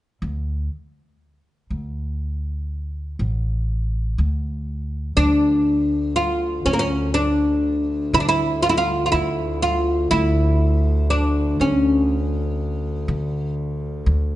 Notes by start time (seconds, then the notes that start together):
0.22 D2
1.70 D2
3.19 A1
4.18 D2
5.17 D2 D4
6.16 F4
6.65 D2 C#4
6.73 A#3
6.79 C#4
7.14 D4
8.13 D3 E4
8.20 D4
8.29 E4
8.63 F4
8.69 E4
8.77 F4
9.06 F4
9.12 D2 E4
9.62 F4
10.11 D2 E4
11.10 D4
11.60 D2 C#4
13.08 D3
14.06 D2